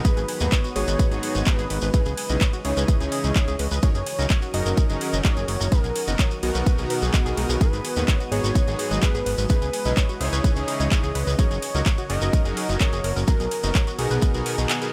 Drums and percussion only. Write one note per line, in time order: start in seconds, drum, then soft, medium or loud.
0.05 kick loud
0.05 closed hi-hat loud
0.05 ride medium
0.05 shekere medium
0.17 closed hi-hat soft
0.17 shekere soft
0.28 open hi-hat loud
0.28 ride medium
0.40 closed hi-hat soft
0.40 shekere medium
0.52 kick loud
0.52 clap loud
0.52 closed hi-hat loud
0.52 ride medium
0.52 shekere medium
0.64 closed hi-hat soft
0.64 shekere soft
0.76 open hi-hat medium
0.76 ride medium
0.87 closed hi-hat soft
0.87 shekere medium
0.99 kick loud
0.99 closed hi-hat medium
0.99 ride medium
0.99 shekere medium
1.12 closed hi-hat soft
1.12 shekere soft
1.23 open hi-hat loud
1.23 ride medium
1.35 closed hi-hat soft
1.35 shekere medium
1.46 kick loud
1.46 clap loud
1.46 closed hi-hat loud
1.46 ride medium
1.46 shekere medium
1.59 closed hi-hat soft
1.59 shekere soft
1.70 open hi-hat loud
1.70 ride medium
1.81 shekere medium
1.94 kick loud
1.94 closed hi-hat loud
1.94 ride medium
1.94 shekere medium
2.05 closed hi-hat soft
2.05 shekere soft
2.17 open hi-hat loud
2.17 ride medium
2.29 closed hi-hat soft
2.29 shekere medium
2.41 kick loud
2.41 clap loud
2.41 closed hi-hat medium
2.41 ride medium
2.41 shekere medium
2.53 closed hi-hat soft
2.53 shekere soft
2.65 open hi-hat loud
2.65 ride medium
2.77 closed hi-hat soft
2.77 shekere medium
2.88 kick loud
2.88 closed hi-hat medium
2.88 ride medium
2.88 shekere medium
3.00 closed hi-hat soft
3.00 shekere soft
3.12 open hi-hat loud
3.12 ride medium
3.24 closed hi-hat soft
3.24 shekere medium
3.36 kick loud
3.36 clap loud
3.36 closed hi-hat medium
3.36 ride medium
3.36 shekere medium
3.48 closed hi-hat soft
3.48 shekere soft
3.59 open hi-hat loud
3.59 ride medium
3.71 shekere medium
3.82 kick loud
3.82 closed hi-hat medium
3.82 ride medium
3.82 shekere medium
3.95 closed hi-hat soft
3.95 shekere soft
4.06 open hi-hat loud
4.06 ride medium
4.19 closed hi-hat soft
4.19 shekere medium
4.29 kick loud
4.29 clap loud
4.29 closed hi-hat medium
4.29 ride medium
4.29 shekere medium
4.42 closed hi-hat soft
4.42 shekere soft
4.54 open hi-hat loud
4.54 ride medium
4.66 closed hi-hat soft
4.66 shekere medium
4.77 kick loud
4.77 closed hi-hat medium
4.77 ride medium
4.77 shekere medium
4.89 closed hi-hat soft
4.89 shekere soft
5.01 open hi-hat loud
5.01 ride medium
5.13 closed hi-hat soft
5.13 shekere medium
5.24 kick loud
5.24 clap loud
5.24 closed hi-hat medium
5.24 ride medium
5.24 shekere medium
5.37 closed hi-hat soft
5.37 shekere soft
5.48 open hi-hat loud
5.48 ride medium
5.61 shekere medium
5.72 kick loud
5.72 closed hi-hat medium
5.72 ride medium
5.72 shekere medium
5.84 closed hi-hat soft
5.84 shekere soft
5.96 open hi-hat loud
5.96 ride medium
6.07 closed hi-hat soft
6.07 shekere medium
6.19 kick loud
6.19 clap loud
6.19 closed hi-hat medium
6.19 ride medium
6.19 shekere medium
6.31 closed hi-hat soft
6.31 shekere soft
6.43 open hi-hat medium
6.43 ride medium
6.55 closed hi-hat soft
6.55 shekere medium
6.66 kick loud
6.66 closed hi-hat medium
6.66 ride medium
6.66 shekere medium
6.78 closed hi-hat soft
6.78 shekere soft
6.90 open hi-hat loud
6.90 ride medium
7.02 closed hi-hat soft
7.02 shekere medium
7.14 kick loud
7.14 clap loud
7.14 closed hi-hat medium
7.14 ride medium
7.14 shekere medium
7.26 closed hi-hat soft
7.26 shekere soft
7.37 open hi-hat medium
7.37 ride medium
7.50 shekere medium
7.61 kick loud
7.61 closed hi-hat medium
7.61 ride medium
7.61 shekere medium
7.73 closed hi-hat soft
7.73 shekere soft
7.85 open hi-hat loud
7.85 ride medium
7.96 closed hi-hat soft
7.96 shekere medium
8.08 kick loud
8.08 clap loud
8.08 closed hi-hat medium
8.08 ride medium
8.08 shekere medium
8.20 closed hi-hat soft
8.20 shekere soft
8.32 open hi-hat medium
8.32 ride medium
8.44 closed hi-hat soft
8.44 shekere medium
8.55 kick loud
8.55 closed hi-hat medium
8.55 ride medium
8.55 shekere medium
8.68 closed hi-hat soft
8.68 shekere soft
8.79 open hi-hat loud
8.79 ride medium
8.91 closed hi-hat soft
8.91 shekere medium
9.02 kick loud
9.02 clap loud
9.02 closed hi-hat medium
9.02 ride medium
9.02 shekere medium
9.15 closed hi-hat soft
9.15 shekere soft
9.26 open hi-hat medium
9.26 ride medium
9.38 shekere medium
9.49 kick loud
9.49 closed hi-hat loud
9.49 ride medium
9.49 shekere medium
9.62 closed hi-hat soft
9.62 shekere soft
9.73 open hi-hat loud
9.73 ride medium
9.85 closed hi-hat soft
9.85 shekere medium
9.97 kick loud
9.97 clap loud
9.97 closed hi-hat medium
9.97 ride medium
9.97 shekere medium
10.09 closed hi-hat soft
10.09 shekere soft
10.21 open hi-hat medium
10.21 ride medium
10.33 closed hi-hat soft
10.33 shekere medium
10.44 kick loud
10.44 closed hi-hat medium
10.44 ride medium
10.44 shekere medium
10.56 closed hi-hat soft
10.56 shekere soft
10.68 open hi-hat loud
10.68 ride medium
10.80 closed hi-hat soft
10.80 shekere medium
10.91 kick loud
10.91 clap loud
10.91 closed hi-hat medium
10.91 ride medium
10.91 shekere medium
11.03 closed hi-hat soft
11.03 shekere soft
11.15 open hi-hat medium
11.15 ride medium
11.27 shekere medium
11.39 kick loud
11.39 closed hi-hat loud
11.39 ride medium
11.39 shekere medium
11.51 closed hi-hat soft
11.51 shekere soft
11.62 open hi-hat loud
11.62 ride medium
11.75 closed hi-hat soft
11.75 shekere medium
11.86 kick loud
11.86 clap loud
11.86 closed hi-hat loud
11.86 ride medium
11.86 shekere medium
11.98 closed hi-hat soft
11.98 shekere soft
12.10 open hi-hat medium
12.10 ride medium
12.21 closed hi-hat soft
12.21 shekere medium
12.33 kick loud
12.33 closed hi-hat loud
12.33 ride medium
12.33 shekere medium
12.45 closed hi-hat soft
12.45 shekere soft
12.57 open hi-hat loud
12.57 ride medium
12.69 closed hi-hat soft
12.69 shekere medium
12.80 kick loud
12.80 clap loud
12.80 closed hi-hat loud
12.80 ride medium
12.80 shekere medium
12.93 closed hi-hat soft
12.93 shekere soft
13.04 open hi-hat medium
13.04 ride medium
13.17 shekere medium
13.27 kick loud
13.27 closed hi-hat loud
13.27 ride medium
13.27 shekere medium
13.40 closed hi-hat soft
13.40 shekere soft
13.51 open hi-hat loud
13.51 ride medium
13.63 closed hi-hat soft
13.63 shekere medium
13.75 kick loud
13.75 clap loud
13.75 closed hi-hat loud
13.75 ride medium
13.75 shekere medium
13.87 closed hi-hat soft
13.87 shekere soft
13.99 open hi-hat medium
13.99 ride medium
14.11 closed hi-hat soft
14.11 shekere medium
14.21 kick loud
14.21 closed hi-hat loud
14.21 ride medium
14.21 shekere medium
14.34 closed hi-hat soft
14.34 shekere soft
14.46 open hi-hat loud
14.46 ride medium
14.58 closed hi-hat soft
14.58 shekere medium
14.69 clap loud
14.69 closed hi-hat loud
14.69 ride medium
14.69 shekere medium
14.82 closed hi-hat soft
14.82 shekere soft